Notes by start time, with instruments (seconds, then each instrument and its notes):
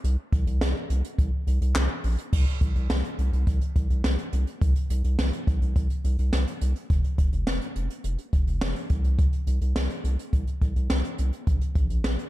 0.04 analog synth bass C2, closed hi-hat
0.32 analog synth bass C2, kick, closed hi-hat
0.47 analog synth bass C2, closed hi-hat
0.61 analog synth bass C2, snare, closed hi-hat
0.90 analog synth bass C2, closed hi-hat
1.04 closed hi-hat
1.18 analog synth bass C2, kick, closed hi-hat
1.47 analog synth bass C2, closed hi-hat
1.61 analog synth bass C2, closed hi-hat
1.75 analog synth bass C2, snare, clap, closed hi-hat
2.04 analog synth bass A#1, open hi-hat
2.18 closed hi-hat
2.33 analog synth bass C2, kick, crash
2.47 closed hi-hat
2.61 analog synth bass C2, kick, closed hi-hat
2.76 analog synth bass C2, closed hi-hat
2.90 analog synth bass C2, snare
3.04 closed hi-hat
3.19 analog synth bass C2, closed hi-hat
3.33 analog synth bass C2, closed hi-hat
3.47 analog synth bass C2, kick, closed hi-hat
3.61 closed hi-hat
3.76 analog synth bass C2, kick, closed hi-hat
3.90 analog synth bass C2, closed hi-hat
4.04 analog synth bass C2, snare
4.19 closed hi-hat
4.33 analog synth bass C2, closed hi-hat
4.47 closed hi-hat
4.62 analog synth bass C2, kick, closed hi-hat
4.76 closed hi-hat
4.90 analog synth bass C2, closed hi-hat
5.04 analog synth bass C2, closed hi-hat
5.19 analog synth bass C2, snare
5.33 closed hi-hat
5.47 analog synth bass C2, kick, closed hi-hat
5.62 analog synth bass C2, closed hi-hat
5.76 analog synth bass C2, kick, closed hi-hat
5.90 closed hi-hat
6.04 analog synth bass C2, closed hi-hat
6.19 analog synth bass C2, closed hi-hat
6.33 analog synth bass C2, snare
6.47 closed hi-hat
6.61 analog synth bass C2, closed hi-hat
6.76 closed hi-hat
6.90 analog synth bass F1, kick, closed hi-hat
7.04 closed hi-hat
7.18 analog synth bass F1, kick, closed hi-hat
7.33 analog synth bass F1, closed hi-hat
7.47 analog synth bass F1, snare
7.61 closed hi-hat
7.76 analog synth bass F1, closed hi-hat
7.90 closed hi-hat
8.04 analog synth bass F1, closed hi-hat
8.18 closed hi-hat
8.33 analog synth bass F1, kick, closed hi-hat
8.47 analog synth bass F1, closed hi-hat
8.61 analog synth bass F1, snare
8.76 closed hi-hat
8.90 analog synth bass C2, kick, closed hi-hat
9.04 closed hi-hat
9.19 kick, closed hi-hat
9.33 closed hi-hat
9.47 analog synth bass C2, closed hi-hat
9.61 analog synth bass C2, closed hi-hat
9.76 analog synth bass C2, snare
9.90 closed hi-hat
10.04 analog synth bass C2, closed hi-hat
10.19 closed hi-hat
10.33 analog synth bass C2, kick, closed hi-hat
10.47 closed hi-hat
10.62 analog synth bass C2, kick, closed hi-hat
10.76 analog synth bass C2, closed hi-hat
10.90 analog synth bass C2, snare
11.04 closed hi-hat
11.18 analog synth bass C2, closed hi-hat
11.33 closed hi-hat
11.47 analog synth bass A#1, kick, closed hi-hat
11.61 closed hi-hat
11.75 analog synth bass A#1, kick, closed hi-hat
11.90 analog synth bass A#1, closed hi-hat
12.04 analog synth bass A#1, snare
12.19 closed hi-hat